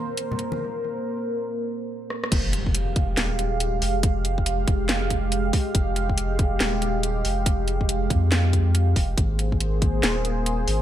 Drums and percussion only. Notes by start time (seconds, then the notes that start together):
0.17 closed hi-hat
0.31 low conga
0.39 closed hi-hat
0.52 muted conga
2.10 cross-stick
2.24 cross-stick
2.32 kick, closed hi-hat, crash
2.53 closed hi-hat
2.67 kick
2.75 closed hi-hat
2.96 kick, closed hi-hat
3.17 snare, closed hi-hat
3.39 closed hi-hat
3.60 closed hi-hat
3.82 open hi-hat
4.03 kick, closed hi-hat
4.25 closed hi-hat
4.38 kick
4.46 closed hi-hat
4.68 kick, closed hi-hat
4.89 snare, closed hi-hat
5.10 kick, closed hi-hat
5.32 closed hi-hat
5.53 kick, open hi-hat
5.75 kick, closed hi-hat
5.96 closed hi-hat
6.09 kick
6.18 closed hi-hat
6.39 kick, closed hi-hat
6.60 snare, closed hi-hat
6.82 closed hi-hat
7.03 closed hi-hat
7.25 open hi-hat
7.46 kick, closed hi-hat
7.68 closed hi-hat
7.81 kick
7.89 closed hi-hat
8.10 kick, closed hi-hat
8.32 snare, closed hi-hat
8.53 kick, closed hi-hat
8.75 closed hi-hat
8.96 kick, open hi-hat
9.18 kick, closed hi-hat
9.39 closed hi-hat
9.52 kick
9.60 closed hi-hat
9.82 kick, closed hi-hat
10.03 snare, closed hi-hat
10.25 closed hi-hat
10.46 closed hi-hat
10.68 open hi-hat